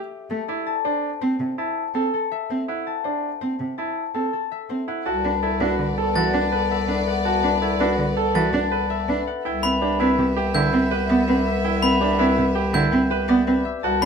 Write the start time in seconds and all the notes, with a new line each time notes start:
Already playing: G4 A4 D5 E5
0.30 A3 A4
0.48 E4 D5
0.67 A5
0.85 D4 C5
1.21 C4 C5
1.40 C3
1.58 E4 A5
1.94 C4 A4 A5
2.14 A4
2.32 E5
2.50 C4 C5
2.68 E4 F#5
2.87 A5
3.04 D4 C5
3.41 C4 C5
3.60 C3
3.78 E4 A5
4.14 C4 A4 A5
4.33 A4
4.52 E5
4.69 C4 C5
4.88 E4 F#5
5.06 C2 B3 F#4 D5 A5
5.24 D4 B4
5.42 E4 A4
5.60 D4 F#4 B4
5.79 D3
5.97 A4 A5
6.16 E3 F#4 A6
6.34 D4 A5
6.52 A4 B4
6.71 E5
6.88 D4 B4
7.07 F#5
7.25 F#4 A5
7.44 D4 B4
7.62 E4 A4
7.80 D4 F#4 B4
7.98 D3
8.17 A4 A5
8.35 E3 F#4 A6
8.53 D4 A5
8.72 A4 B4
8.90 E5
9.09 D4 B4
9.27 F#5
9.45 C2 B3 E4 E5 G5
9.63 C4 B4 B5
9.81 D4 G4
10.00 C4 E4 B4
10.18 C3 G4
10.37 G4 G5
10.54 D3 E4 G6
10.73 C4 G5
10.91 G4 B4
11.09 B3 D5
11.28 C4 B4
11.47 E5
11.64 E4 G5
11.82 C4 B4 B5
12.00 D4 G4
12.19 C4 E4 B4
12.37 C3 G4
12.55 G4 G5
12.74 D3 E4 G6
12.92 C4 G5
13.10 G4 B4
13.28 B3 D5
13.47 C4 B4
13.65 E5
13.83 C2 B3 F#4 D5 A5
14.02 D4 B5